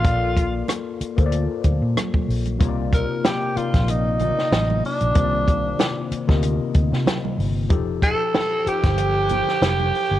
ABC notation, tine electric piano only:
X:1
M:4/4
L:1/16
Q:"Swing 16ths" 1/4=94
K:Cdor
V:1 name="Tine electric piano"
[B,FAd]4 z3 [B,FAcd]4- [B,FAcd] z4 | [C,B,EF_d=d]4 z2 [C,B,EFd]2 z2 [C,B,EFd]4 z2 | [C,E,B,Fcd]4 z3 [C,B,EFe]4- [C,B,EFe] z4 | [F,EGA]4 z2 [F,EGc]2 z2 [F,EGc]4 z2 |]